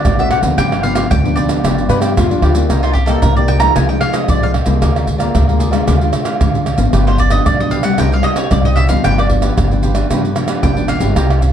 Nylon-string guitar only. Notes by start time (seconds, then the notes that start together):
Already playing: A3 C4 F#4
0.04 A2
0.19 A3 C4 F#4
0.43 F3 B3 D4
0.58 G2
0.83 F3 B3 D4
1.11 D3
1.24 F3 B3 D4
1.64 G2 F3 B3 D4
1.90 F3 B3 D4
2.16 D3
2.31 F3 B3 D4
2.54 A#3 D#4 G4
2.70 C3
3.07 A#3 D#4 G4
3.22 G2
3.37 A#3 D#4 G4
3.61 F3 G#3 D#4
3.76 C3
3.90 F3 G#3 D#4
4.29 C3 F3 G#3 D#4
4.66 G#3 A#3 F4
4.82 D3
5.20 G#3 A#3 F4
5.35 D3
5.49 G#3 A#3 F4
5.72 G#3 D4 F4
5.88 D3
6.02 G#3 D4 F4
6.40 D3 G#3 D4 F4
6.78 F3 B3 D4
6.93 G2
7.30 F3 B3 D4
7.46 D3
7.60 F3 B3 D4
7.83 G3 C4 D#4
7.99 C3
8.12 G3 C4 D#4
8.51 G2 G3 C4 D#4
8.89 F3 B3 D4
9.04 G2
9.29 F3 B3 D4
9.71 F3 B3 D4
9.94 F3 B3 D4
10.10 G2 F3 B3 D4
10.35 F3 B3 D4
10.62 D3
10.76 F3 B3 D4
10.99 C4 D#4 G4
11.15 C3